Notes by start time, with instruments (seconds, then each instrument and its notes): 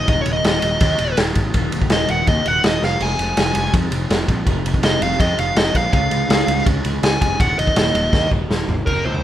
0.07 picked electric bass D#1, clean electric guitar D#2 A#2 D#3 F#3 A#3 D#4, lead electric guitar D#5, kick, ride
0.22 lead electric guitar C#5
0.26 picked electric bass D#1, clean electric guitar D#3 F#3 A#3, ride
0.33 lead electric guitar D#5
0.44 picked electric bass D#1, clean electric guitar D#2 A#2 D#3 F#3 A#3 D#4, lead electric guitar D#5, snare, ride
0.62 picked electric bass D#1, clean electric guitar D#3 F#3 A#3 D#4, ride
0.80 picked electric bass D#2, kick, ride
0.98 picked electric bass D#1, clean electric guitar D#3 F#3 A#3 D#4, ride
1.17 picked electric bass D#1, clean electric guitar D#3 F#3 A#3 D#4, snare, ride
1.35 picked electric bass G#1, kick, ride
1.53 picked electric bass D#1, clean electric guitar D#2 A#2 D#3 F#3 A#3 D#4, kick, ride
1.72 picked electric bass D#1, clean electric guitar D#3 F#3 A#3 D#4, ride
1.82 kick
1.90 picked electric bass D#1, clean electric guitar D#2 A#2 D#3 F#3 A#3 D#4, lead electric guitar D#5, snare, ride
2.08 picked electric bass D#1, clean electric guitar D#3 F#3 A#3 D#4, lead electric guitar F#5, ride
2.27 picked electric bass D#2, lead electric guitar D#5, kick, ride
2.45 picked electric bass D#1, clean electric guitar D#3 F#3 A#3 D#4, lead electric guitar F#5, ride
2.64 picked electric bass D#1, lead electric guitar D#5, snare, ride
2.81 picked electric bass F1, clean electric guitar F2 C3 F3 G#3 C4 D#4, lead electric guitar F5, snare
3.00 picked electric bass F1, clean electric guitar F2 C3 F3 G#3 C4 D#4, lead electric guitar G#5, crash
3.18 picked electric bass F1, clean electric guitar F3 G#3 C4 D#4, ride
3.37 picked electric bass F1, clean electric guitar F2 C3 F3 G#3 C4 D#4, snare, ride
3.55 picked electric bass F1, clean electric guitar F3 G#3 C4 D#4, ride
3.65 snare
3.74 picked electric bass F2, kick, ride
3.91 picked electric bass F1, clean electric guitar F3 G#3 C4 D#4, ride
4.09 picked electric bass F1, clean electric guitar F3 G#3 C4 D#4, snare, ride
4.28 picked electric bass A#1, kick, ride
4.46 picked electric bass F1, clean electric guitar F2 C3 F3 G#3 C4 D#4, kick, ride
4.64 picked electric bass F1, clean electric guitar F3 G#3 C4 D#4, ride
4.74 kick
4.82 picked electric bass F1, clean electric guitar F2 C3 F3 G#3 C4 D#4, lead electric guitar D#5, snare, ride
5.01 picked electric bass F1, clean electric guitar F3 G#3 C4 D#4, lead electric guitar F5, ride
5.11 snare
5.20 picked electric bass F2, lead electric guitar D#5, kick, ride
5.37 picked electric bass F1, clean electric guitar F3 G#3 C4 D#4, lead electric guitar F5, ride
5.55 picked electric bass F1, clean electric guitar F3 G#3 C4 D#4, lead electric guitar D#5, snare, ride
5.75 picked electric bass A#1, lead electric guitar F5, kick, ride
5.91 picked electric bass C#2, clean electric guitar C#3 G#3 C#4 D#4 G#4, lead electric guitar F5, kick, ride
6.11 picked electric bass C#2, clean electric guitar C#4 D#4 G#4, ride
6.28 picked electric bass C#2, clean electric guitar C#3 G#3 C#4 D#4 G#4, snare, ride
6.47 picked electric bass C#2, clean electric guitar C#4 D#4 G#4, ride
6.58 snare
6.66 picked electric bass C#2, kick, ride
6.84 picked electric bass C#2, clean electric guitar C#4 D#4 G#4, ride
7.03 picked electric bass C#2, clean electric guitar G#3 C#4 D#4 G#4, lead electric guitar G#5, snare, ride
7.21 picked electric bass F1, lead electric guitar G#5, kick, ride
7.39 picked electric bass D#1, clean electric guitar D#2 A#2 D#3 F#3 A#3 D#4, lead electric guitar F#5, kick, ride
7.57 picked electric bass D#1, clean electric guitar D#3 F#3 A#3 D#4, lead electric guitar D#5, ride
7.67 kick
7.75 picked electric bass D#1, clean electric guitar D#2 A#2 D#3 F#3 A#3 D#4, snare, ride
7.93 picked electric bass D#1, clean electric guitar D#3 F#3 A#3 D#4, ride
8.13 picked electric bass D#2, kick, snare
8.31 picked electric bass D#1, clean electric guitar D#3 F#3 A#3 D#4, kick
8.49 picked electric bass D#1, clean electric guitar D#3 F#3 A#3 D#4, snare
8.68 picked electric bass G#1, floor tom
8.86 picked electric bass F#1, clean electric guitar F#2 C#3 F#3, lead electric guitar A#4, kick, floor tom, crash
9.05 picked electric bass C#2, clean electric guitar F#2 C#3, lead electric guitar C5, mid tom
9.14 floor tom